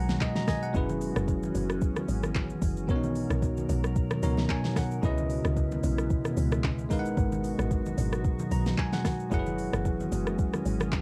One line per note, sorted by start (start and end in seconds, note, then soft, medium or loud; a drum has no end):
0.00 0.18 B1 medium
0.00 0.70 B2 medium
0.00 0.72 F#3 medium
0.00 0.43 G#3 medium
0.00 2.85 G#3 medium
0.00 0.70 B3 medium
0.00 0.43 D#4 medium
0.00 0.44 F#4 medium
0.00 4.99 F#4 loud
0.00 0.44 A#4 medium
0.00 0.45 B4 medium
0.00 0.19 F#5 medium
0.00 0.48 G#5 medium
0.00 0.36 A#5 medium
0.09 snare medium
0.09 high conga medium
0.09 shaker medium
0.21 0.46 D#5 medium
0.21 kick medium
0.21 clap medium
0.21 low conga medium
0.21 shaker medium
0.36 0.47 A#5 medium
0.36 snare medium
0.36 high conga medium
0.36 shaker medium
0.48 0.73 D#5 medium
0.48 0.62 G#5 medium
0.48 kick loud
0.48 cross-stick loud
0.48 snare medium
0.48 open hi-hat medium
0.48 high conga medium
0.48 shaker medium
0.62 0.88 F#5 medium
0.62 shaker medium
0.73 1.12 F#1 loud
0.73 2.87 E3 medium
0.73 2.84 F#3 medium
0.73 2.87 B3 medium
0.73 2.84 C#4 medium
0.73 2.87 C#4 medium
0.73 2.85 E4 medium
0.73 2.85 G#4 medium
0.73 2.86 B4 medium
0.73 kick loud
0.73 low conga medium
0.73 shaker medium
0.89 high conga medium
0.89 shaker medium
1.01 open hi-hat soft
1.01 shaker medium
1.16 1.51 F#1 loud
1.16 cross-stick loud
1.16 shaker medium
1.28 kick loud
1.28 low conga medium
1.28 shaker medium
1.43 high conga medium
1.43 shaker medium
1.55 1.92 F#1 medium
1.55 open hi-hat medium
1.55 low conga medium
1.55 shaker medium
1.70 cross-stick medium
1.70 shaker medium
1.81 kick loud
1.81 shaker medium
1.96 cross-stick medium
1.96 high conga medium
1.96 shaker medium
2.08 2.57 G#1 loud
2.08 open hi-hat soft
2.08 shaker medium
2.23 cross-stick medium
2.23 high conga medium
2.23 shaker medium
2.35 kick medium
2.35 clap medium
2.35 low conga medium
2.35 shaker medium
2.50 high conga medium
2.50 shaker medium
2.62 2.90 F#1 loud
2.62 kick loud
2.62 open hi-hat medium
2.62 high conga medium
2.62 shaker medium
2.77 shaker medium
2.87 3.26 B1 loud
2.87 4.19 B2 medium
2.87 9.28 B2 medium
2.87 5.01 F#3 medium
2.87 4.20 B3 medium
2.87 11.02 B3 medium
2.87 2.96 C#4 medium
2.87 5.01 A#4 medium
2.87 4.21 A#4 medium
2.87 4.21 C#5 medium
2.87 kick loud
2.87 shaker medium
2.96 4.22 D#4 medium
3.03 high conga medium
3.03 shaker medium
3.15 open hi-hat soft
3.15 shaker medium
3.30 3.65 B1 loud
3.30 cross-stick medium
3.30 shaker medium
3.42 kick loud
3.42 low conga medium
3.42 shaker medium
3.57 high conga medium
3.57 shaker soft
3.69 4.07 B1 loud
3.69 open hi-hat medium
3.69 low conga medium
3.69 shaker loud
3.84 cross-stick medium
3.84 shaker medium
3.96 kick loud
3.96 shaker medium
4.11 cross-stick medium
4.11 high conga medium
4.11 shaker medium
4.22 4.47 C#2 loud
4.22 5.03 B2 medium
4.22 5.03 B3 medium
4.22 5.03 D#4 medium
4.22 5.03 A#4 medium
4.22 5.04 C#5 medium
4.22 4.48 A#5 medium
4.22 open hi-hat medium
4.22 shaker medium
4.37 snare medium
4.37 high conga medium
4.49 4.75 G#5 medium
4.49 kick medium
4.49 clap medium
4.49 low conga medium
4.49 shaker medium
4.64 snare medium
4.64 high conga medium
4.64 shaker medium
4.76 5.01 F#5 medium
4.76 kick loud
4.76 cross-stick loud
4.76 snare medium
4.76 open hi-hat medium
4.76 high conga medium
4.76 shaker medium
4.91 shaker medium
5.02 5.40 C#2 loud
5.02 6.86 C#3 medium
5.02 6.89 G#3 medium
5.02 6.87 C#4 medium
5.02 6.89 C#4 medium
5.02 6.89 E4 medium
5.02 6.87 E4 medium
5.02 6.88 B4 medium
5.02 6.88 D#5 medium
5.02 kick loud
5.02 low conga medium
5.02 shaker medium
5.18 high conga medium
5.18 shaker medium
5.30 open hi-hat soft
5.30 shaker medium
5.45 5.80 C#2 loud
5.45 cross-stick loud
5.45 shaker medium
5.57 kick medium
5.57 low conga medium
5.57 shaker medium
5.71 high conga medium
5.71 shaker soft
5.83 6.21 B1 loud
5.83 open hi-hat medium
5.83 low conga medium
5.83 shaker loud
5.98 cross-stick medium
5.98 shaker medium
6.10 kick loud
6.10 shaker medium
6.25 cross-stick medium
6.25 high conga medium
6.25 shaker medium
6.37 6.92 C#2 loud
6.37 open hi-hat medium
6.37 shaker medium
6.52 cross-stick loud
6.52 high conga medium
6.52 shaker medium
6.64 kick medium
6.64 clap medium
6.64 low conga medium
6.64 shaker medium
6.78 high conga medium
6.78 shaker medium
6.89 7.15 G#1 loud
6.89 9.29 F#3 medium
6.89 9.00 G#3 medium
6.89 9.29 G#3 medium
6.89 9.01 D#4 medium
6.89 11.02 F#4 loud
6.89 9.01 A#4 medium
6.89 9.01 B4 medium
6.89 6.99 F5 medium
6.89 kick loud
6.89 open hi-hat medium
6.89 high conga medium
6.89 shaker medium
6.99 8.92 F#5 medium
7.05 shaker medium
7.17 7.55 G#1 loud
7.17 kick loud
7.17 low conga medium
7.17 shaker medium
7.32 high conga medium
7.32 shaker medium
7.44 open hi-hat soft
7.44 shaker medium
7.59 7.94 G#1 loud
7.59 cross-stick medium
7.59 shaker medium
7.71 kick loud
7.71 low conga medium
7.71 shaker medium
7.86 high conga medium
7.86 shaker medium
7.98 8.35 G#1 loud
7.98 open hi-hat medium
7.98 low conga medium
7.98 shaker loud
8.12 cross-stick medium
8.12 shaker medium
8.24 kick loud
8.24 shaker medium
8.39 high conga medium
8.39 shaker medium
8.51 8.75 B1 medium
8.51 8.76 A#5 medium
8.51 open hi-hat medium
8.51 shaker medium
8.66 snare medium
8.66 high conga medium
8.66 shaker medium
8.78 8.92 G#5 medium
8.78 kick medium
8.78 clap medium
8.78 low conga medium
8.78 shaker medium
8.93 9.29 F#5 medium
8.93 snare medium
8.93 high conga medium
8.93 shaker medium
9.05 kick loud
9.05 cross-stick medium
9.05 snare medium
9.05 open hi-hat medium
9.05 high conga medium
9.05 shaker medium
9.20 shaker medium
9.30 9.69 F#1 loud
9.30 11.02 E3 medium
9.30 11.02 F#3 medium
9.30 11.02 G#3 medium
9.30 11.02 C#4 medium
9.30 11.02 E4 medium
9.30 11.02 G#4 medium
9.30 9.39 A#4 medium
9.30 11.02 F#5 medium
9.30 kick loud
9.30 low conga medium
9.30 shaker medium
9.39 11.02 B4 medium
9.46 high conga medium
9.46 shaker medium
9.58 open hi-hat soft
9.58 shaker medium
9.73 10.08 F#1 loud
9.73 cross-stick loud
9.73 shaker medium
9.85 kick loud
9.85 low conga medium
9.85 shaker medium
10.00 high conga medium
10.00 shaker medium
10.12 10.49 F#1 medium
10.12 open hi-hat medium
10.12 low conga medium
10.12 shaker loud
10.27 cross-stick medium
10.27 shaker medium
10.39 kick loud
10.39 shaker medium
10.53 cross-stick medium
10.53 high conga medium
10.53 shaker medium
10.66 11.02 G#1 loud
10.66 open hi-hat medium
10.66 shaker medium
10.80 cross-stick loud
10.80 high conga medium
10.80 shaker medium
10.92 kick medium
10.92 clap medium
10.92 low conga medium
10.92 shaker medium